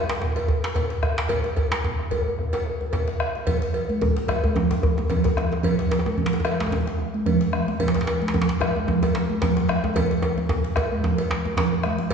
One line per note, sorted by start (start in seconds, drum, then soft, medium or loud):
0.09 djembe slap medium
0.21 bombo low medium
0.21 djembe tone medium
0.36 bombo rim soft
0.36 cowbell medium
0.36 djembe slap medium
0.36 djembe tone medium
0.48 bombo rim soft
0.48 djembe slap soft
0.48 djembe bass medium
0.64 djembe slap loud
0.75 bombo rim soft
0.75 bombo low loud
0.75 cowbell soft
0.75 djembe tone medium
0.90 djembe slap medium
1.02 bombo rim medium
1.02 djembe slap soft
1.02 djembe bass medium
1.17 djembe slap loud
1.17 djembe tone medium
1.29 bombo low medium
1.29 cowbell medium
1.29 djembe tone medium
1.29 djembe bass medium
1.44 djembe slap medium
1.56 cowbell soft
1.56 djembe slap soft
1.56 djembe bass medium
1.71 djembe slap loud
1.71 djembe tone medium
1.84 bombo low medium
1.84 djembe tone medium
1.99 bombo rim soft
2.11 cowbell soft
2.11 djembe tone medium
2.11 djembe bass medium
2.26 djembe slap soft
2.39 bombo rim soft
2.39 bombo low medium
2.53 cowbell medium
2.53 djembe slap medium
2.53 djembe tone medium
2.66 bombo rim soft
2.66 djembe slap soft
2.81 djembe bass medium
2.93 bombo rim soft
2.93 bombo low loud
2.93 cowbell medium
2.93 djembe tone medium
3.08 bombo rim soft
3.08 djembe slap medium
3.20 bombo rim loud
3.35 bombo rim soft
3.35 djembe tone medium
3.47 bombo low loud
3.47 cowbell medium
3.47 djembe slap soft
3.47 djembe bass medium
3.47 low conga medium
3.62 bombo rim soft
3.62 djembe slap medium
3.74 cowbell soft
3.89 djembe tone medium
3.89 high conga medium
4.01 bombo low medium
4.01 low conga medium
4.01 djembe bass loud
4.17 djembe slap medium
4.17 djembe tone medium
4.28 bombo rim loud
4.28 cowbell medium
4.28 djembe slap soft
4.28 djembe tone medium
4.28 djembe bass medium
4.44 high conga medium
4.44 djembe bass loud
4.56 bombo low medium
4.56 djembe tone medium
4.56 low conga medium
4.71 bombo rim soft
4.71 djembe slap medium
4.71 djembe tone medium
4.71 high conga soft
4.83 bombo rim soft
4.83 djembe slap soft
4.83 djembe bass loud
4.97 djembe tone medium
4.97 high conga medium
4.97 djembe bass medium
5.09 bombo rim soft
5.09 bombo low medium
5.09 cowbell medium
5.09 djembe tone medium
5.09 low conga medium
5.24 djembe slap medium
5.24 high conga soft
5.24 djembe bass loud
5.37 bombo rim medium
5.37 djembe slap soft
5.37 high conga soft
5.37 djembe tone medium
5.52 djembe tone medium
5.63 bombo low medium
5.63 cowbell medium
5.63 djembe slap soft
5.63 low conga medium
5.63 djembe bass medium
5.79 bombo rim soft
5.79 djembe slap medium
5.91 cowbell soft
5.91 djembe slap medium
5.99 djembe tone medium
6.06 high conga medium
6.06 djembe tone medium
6.17 bombo low medium
6.17 low conga medium
6.26 djembe slap medium
6.33 djembe slap medium
6.33 djembe tone medium
6.40 djembe tone medium
6.45 bombo rim loud
6.45 cowbell medium
6.45 djembe slap soft
6.45 djembe tone medium
6.60 djembe slap medium
6.60 high conga medium
6.66 djembe tone medium
6.71 bombo low medium
6.71 djembe tone medium
6.71 low conga medium
6.86 bombo rim soft
6.86 djembe slap medium
6.86 djembe tone medium
6.86 high conga soft
6.98 bombo rim soft
6.98 djembe slap soft
7.14 high conga medium
7.26 bombo rim soft
7.26 bombo low loud
7.26 cowbell soft
7.26 djembe tone medium
7.26 low conga medium
7.41 djembe slap medium
7.41 high conga soft
7.53 bombo rim loud
7.53 djembe slap soft
7.53 high conga soft
7.68 djembe tone medium
7.68 high conga medium
7.79 bombo low loud
7.79 cowbell medium
7.79 djembe slap soft
7.79 low conga medium
7.79 djembe bass medium
7.88 djembe slap medium
7.94 bombo rim soft
7.94 djembe slap medium
7.94 djembe tone medium
8.01 djembe slap medium
8.07 cowbell soft
8.07 djembe slap medium
8.22 djembe tone medium
8.22 high conga medium
8.28 djembe slap medium
8.34 bombo low loud
8.34 djembe tone medium
8.34 low conga medium
8.41 djembe slap medium
8.49 djembe slap medium
8.61 bombo rim loud
8.61 cowbell soft
8.61 djembe slap soft
8.61 djembe tone medium
8.61 djembe bass medium
8.76 high conga medium
8.88 bombo low medium
8.88 djembe tone medium
8.88 low conga medium
9.03 bombo rim soft
9.03 cowbell medium
9.03 djembe slap medium
9.03 djembe tone medium
9.03 high conga soft
9.15 bombo rim soft
9.15 djembe slap soft
9.15 djembe slap medium
9.29 high conga medium
9.29 djembe bass medium
9.42 bombo rim soft
9.42 bombo low loud
9.42 cowbell soft
9.42 djembe slap medium
9.42 djembe tone medium
9.42 low conga medium
9.57 djembe slap medium
9.57 high conga soft
9.69 bombo rim loud
9.69 djembe slap soft
9.69 djembe tone medium
9.69 high conga soft
9.84 djembe tone medium
9.84 high conga medium
9.95 bombo low loud
9.95 cowbell medium
9.95 djembe tone loud
9.95 djembe bass medium
9.95 low conga medium
10.11 bombo rim soft
10.11 djembe slap medium
10.11 high conga soft
10.22 cowbell soft
10.22 djembe tone loud
10.37 bombo rim soft
10.37 djembe tone medium
10.37 high conga medium
10.49 bombo rim soft
10.49 bombo low loud
10.49 djembe tone loud
10.49 low conga medium
10.64 djembe slap medium
10.76 bombo rim medium
10.76 cowbell soft
10.76 djembe slap soft
10.76 djembe tone loud
10.76 djembe tone medium
10.76 djembe bass medium
10.91 bombo rim soft
10.91 high conga medium
11.03 bombo low medium
11.03 djembe tone loud
11.03 low conga medium
11.18 bombo rim soft
11.18 cowbell medium
11.18 djembe slap medium
11.18 djembe tone medium
11.18 high conga soft
11.30 djembe slap soft
11.30 djembe slap loud
11.30 high conga soft
11.45 bombo rim soft
11.45 high conga medium
11.45 djembe bass medium
11.57 bombo rim soft
11.57 bombo low medium
11.57 cowbell soft
11.57 djembe slap soft
11.57 djembe slap loud
11.57 djembe tone medium
11.57 high conga soft
11.57 low conga medium
11.72 djembe bass soft
11.72 low conga soft
11.83 bombo rim loud
11.83 djembe slap medium
11.83 high conga medium
11.98 djembe slap medium
11.98 high conga medium
12.11 bombo low loud
12.11 cowbell medium